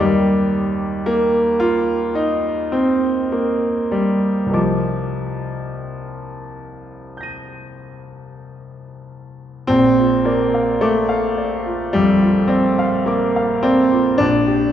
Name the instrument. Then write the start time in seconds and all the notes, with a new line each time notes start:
grand piano
Already playing: D#2 G4 A#4 D#5
0.00 G3 D6
1.06 A#3
1.60 F4
2.15 D#4
2.72 C4
3.32 A#3
3.92 G3
4.46 C2 G4
4.50 F3 A#4 D#5 D6
7.17 G6 A#6
7.23 D#7
9.67 A#1 C4
9.99 F4
10.25 A#3 D5
10.54 F5
10.81 A3 D6
11.09 F5
11.38 D5
11.66 F4
11.93 F2 G3
12.22 F4
12.48 C4 D5
12.79 F5
13.06 A#3 D6
13.36 F5
13.63 C4 D5
13.92 F4
14.18 A#1 D4
14.47 G4